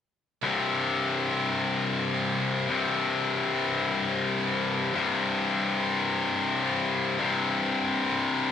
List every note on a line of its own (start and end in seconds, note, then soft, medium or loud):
0.42 1.30 C2 medium
0.42 1.26 G2 medium
0.42 1.28 C3 medium
1.28 2.12 C2 medium
1.28 2.12 G2 medium
1.28 2.14 C3 medium
2.13 2.69 C2 medium
2.13 2.68 G2 medium
2.13 2.71 C3 medium
2.69 3.56 C2 medium
2.69 3.53 G2 medium
2.69 3.53 C3 loud
3.54 4.37 C2 medium
3.54 4.37 G2 medium
3.54 4.39 C3 medium
4.38 4.93 C2 medium
4.38 4.93 G2 medium
4.38 4.95 C3 medium
4.93 5.80 C2 medium
4.93 5.77 G2 loud
4.93 5.78 C3 medium
5.78 6.62 C2 medium
5.78 6.62 G2 medium
5.78 6.64 C3 medium
6.62 7.18 C2 medium
6.62 7.18 G2 medium
6.62 7.20 C3 medium
7.19 8.01 C2 medium
7.19 8.02 G2 medium
7.19 8.03 C3 medium
8.04 8.52 C2 medium
8.04 8.52 G2 medium
8.04 8.52 C3 medium